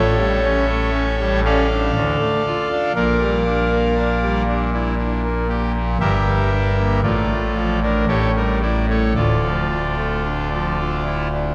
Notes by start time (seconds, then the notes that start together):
Already playing: A1 A2 A4 C#5 E5
0.17 G3
0.44 C#4
0.68 A3
0.93 C#4
1.19 G3
1.45 C#4 A4 D5 F5
1.70 D4
1.95 D2 D3
2.19 A3
2.46 F4
2.71 D4
2.95 A#1 A#2 A#4 D5 F5
3.21 G3
3.45 D4
3.72 A#3
3.96 D4
4.22 G3
4.47 D4
4.73 E4
4.98 D4
5.24 A#3
5.49 G4
5.76 A#3
6.00 G1 G2 G4 A#4 E5
6.27 G3
6.51 D4
6.78 A#3
7.03 A1 A2 F4 A4 D5
7.30 A3
7.55 F3
7.83 D4 A#4
8.08 A1 A2 G4 A4 C#5
8.36 G3 A#4
8.62 E4 D5
8.90 A3 C#5
9.15 D1 D2 F4 A4 D5
9.43 F3
9.69 D4
9.97 A3
10.24 D4
10.52 F3
10.79 D4
11.05 E4
11.32 D4